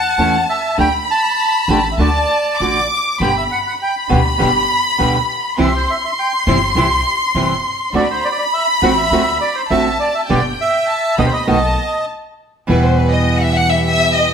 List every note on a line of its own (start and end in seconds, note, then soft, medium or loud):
0.00 0.44 F#5 medium
0.00 0.78 A5 medium
0.18 0.43 E2 soft
0.18 0.36 E3 soft
0.18 0.36 A3 soft
0.18 0.36 C#4 medium
0.18 0.37 E4 soft
0.50 0.77 E5 medium
0.78 1.03 D2 medium
0.78 0.87 D3 medium
0.78 0.88 A3 medium
0.78 0.87 D4 medium
0.78 0.88 G4 medium
0.78 0.93 G5 medium
0.78 1.99 B5 medium
1.11 1.88 A5 medium
1.68 1.93 A1 medium
1.68 1.78 D3 medium
1.68 1.78 A3 medium
1.68 1.79 D4 medium
1.68 1.79 G4 medium
1.92 1.99 E5 soft
1.98 2.24 D2 medium
1.98 2.08 D3 soft
1.98 2.08 A3 medium
1.98 2.09 D4 medium
1.98 2.09 F#4 medium
1.98 2.87 D5 medium
1.98 2.55 A5 medium
2.58 2.85 A1 soft
2.58 2.78 D3 soft
2.58 2.78 A3 soft
2.58 2.78 D4 soft
2.58 2.78 F#4 soft
2.58 3.20 D6 medium
3.20 3.46 G1 medium
3.20 3.30 B2 medium
3.20 3.30 D3 medium
3.20 3.30 G3 medium
3.20 3.46 B3 medium
3.20 3.30 B3 medium
3.20 3.46 D4 soft
3.20 3.46 G4 soft
3.20 3.31 G4 medium
3.20 3.35 G5 medium
3.20 3.80 B5 medium
3.37 3.44 E5 medium
3.52 3.58 F#5 medium
3.67 3.74 F#5 soft
3.81 3.95 G5 medium
3.81 5.55 B5 medium
4.09 4.36 D2 medium
4.09 4.19 B2 medium
4.09 4.19 D3 medium
4.09 4.20 G3 medium
4.09 4.35 B3 medium
4.09 4.20 B3 medium
4.09 4.35 D4 medium
4.09 4.20 G4 medium
4.09 4.36 G4 medium
4.38 4.65 G1 medium
4.38 4.48 B2 medium
4.38 4.49 D3 medium
4.38 4.49 G3 medium
4.38 4.49 B3 medium
4.38 4.65 B3 medium
4.38 4.65 D4 medium
4.38 4.49 G4 medium
4.38 4.65 G4 medium
4.98 5.24 D2 soft
4.98 5.16 B2 soft
4.98 5.16 D3 soft
4.98 5.17 G3 medium
4.98 5.24 B3 soft
4.98 5.17 B3 medium
4.98 5.24 D4 soft
4.98 5.17 G4 soft
4.98 5.24 G4 soft
5.58 5.84 C2 medium
5.58 5.67 C3 medium
5.58 5.68 E3 medium
5.58 5.68 G3 medium
5.58 5.68 C4 medium
5.58 5.83 C4 medium
5.58 5.84 E4 soft
5.58 5.68 E4 medium
5.58 5.84 G4 medium
5.58 5.74 E5 medium
5.58 7.93 C6 medium
5.77 5.90 C5 medium
5.90 5.96 E5 medium
6.05 6.11 E5 medium
6.19 6.32 G5 medium
6.47 6.72 G1 medium
6.47 6.56 C3 medium
6.47 6.56 E3 medium
6.47 6.57 G3 medium
6.47 6.72 C4 medium
6.47 6.57 C4 medium
6.47 6.72 E4 medium
6.47 6.57 E4 medium
6.47 6.72 G4 medium
6.75 7.00 C2 medium
6.75 6.85 C3 medium
6.75 6.86 E3 medium
6.75 6.86 G3 medium
6.75 7.01 C4 medium
6.75 6.86 C4 medium
6.75 7.01 E4 medium
6.75 6.86 E4 medium
6.75 7.01 G4 medium
7.35 7.59 G1 soft
7.35 7.52 C3 soft
7.35 7.53 E3 medium
7.35 7.52 G3 medium
7.35 7.60 C4 soft
7.35 7.53 C4 soft
7.35 7.60 E4 soft
7.35 7.53 E4 medium
7.35 7.60 G4 soft
7.93 8.18 D2 medium
7.93 8.03 D3 medium
7.93 8.03 A3 medium
7.93 8.18 C4 soft
7.93 8.03 C4 medium
7.93 8.19 D4 medium
7.93 8.18 F#4 medium
7.93 8.03 F#4 medium
7.93 8.08 D5 medium
7.93 9.70 B5 medium
8.11 8.24 C5 medium
8.25 8.30 C5 medium
8.25 8.28 D5 medium
8.32 8.37 D5 medium
8.38 8.45 D5 soft
8.54 8.67 E5 medium
8.82 9.07 A1 medium
8.82 8.91 D3 medium
8.82 8.91 A3 medium
8.82 9.07 C4 medium
8.82 8.92 C4 medium
8.82 9.07 D4 medium
8.82 9.07 F#4 medium
8.82 8.92 F#4 medium
8.82 8.89 F#5 medium
8.97 9.38 E5 medium
9.11 9.36 D2 medium
9.11 9.21 D3 medium
9.11 9.21 A3 medium
9.11 9.36 C4 medium
9.11 9.22 C4 medium
9.11 9.37 D4 medium
9.11 9.37 F#4 medium
9.11 9.21 F#4 medium
9.41 9.56 D5 medium
9.55 9.62 C5 medium
9.70 9.95 A1 soft
9.70 9.88 D3 soft
9.70 9.88 A3 medium
9.70 9.95 C4 soft
9.70 9.88 C4 soft
9.70 9.96 D4 soft
9.70 9.96 F#4 soft
9.70 9.88 F#4 soft
9.70 9.98 E5 medium
9.70 10.29 A5 medium
10.00 10.14 D5 medium
10.15 10.21 E5 medium
10.28 10.55 G1 medium
10.28 10.39 B2 medium
10.28 10.39 D3 medium
10.28 10.39 G3 medium
10.28 10.54 B3 medium
10.28 10.39 B3 medium
10.28 10.54 D4 soft
10.28 10.54 G4 medium
10.28 10.39 G4 medium
10.28 10.43 D5 medium
10.28 10.88 G5 medium
10.61 11.16 E5 medium
10.89 11.19 A5 medium
11.18 11.44 D2 medium
11.18 11.28 B2 medium
11.18 11.28 D3 medium
11.18 11.28 G3 medium
11.18 11.44 B3 medium
11.18 11.28 B3 medium
11.18 11.44 D4 medium
11.18 11.28 G4 medium
11.18 11.44 G4 medium
11.18 11.26 D#5 medium
11.18 11.48 B5 medium
11.26 11.33 C5 medium
11.33 12.06 D#5 medium
11.47 11.74 B1 medium
11.47 11.57 B2 medium
11.47 11.57 D#3 medium
11.47 11.57 A3 medium
11.47 11.57 B3 medium
11.47 11.74 B3 medium
11.47 11.74 D#4 medium
11.47 11.57 F#4 medium
11.47 11.74 A4 medium
11.47 12.06 A5 medium
12.67 14.34 E2 medium
12.67 14.34 B2 medium
12.67 14.34 E3 medium
12.67 14.34 G3 medium
12.67 14.34 B3 medium
12.67 14.34 E4 medium
12.67 14.34 G4 medium
12.67 12.82 B4 medium
12.84 12.98 C5 medium
12.96 13.12 B4 medium
13.11 13.37 D#5 medium
13.37 13.41 F#5 medium
13.41 13.56 E5 medium
13.55 13.70 F#5 medium
13.69 13.83 E5 medium
13.84 14.11 E5 medium
14.13 14.34 D#5 medium